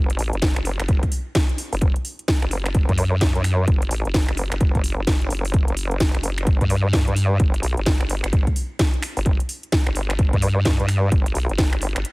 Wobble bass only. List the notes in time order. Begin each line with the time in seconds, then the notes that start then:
Already playing: F#1
0.19 A1
0.33 F#1
0.56 F#1
0.80 F#1
0.89 F#1
1.73 F#1
2.42 F#1
2.89 F#2
3.35 F#2
3.68 F#1
3.91 A1
4.05 F#1
4.28 F#1
4.52 F#1
4.61 F#1
4.75 F#1
4.98 F#1
5.07 F#1
5.30 F#1
5.68 F#1
6.15 F#1
6.23 F#1
6.47 G1
6.61 G2
7.08 G2
7.40 G1
7.63 B1
7.77 G1
8.01 G1
8.24 G1
8.33 G1
9.17 G1
9.87 G1
10.19 G1
10.33 G2
10.80 G2
11.12 G1
11.35 B1
11.49 G1
11.73 G1
11.96 G1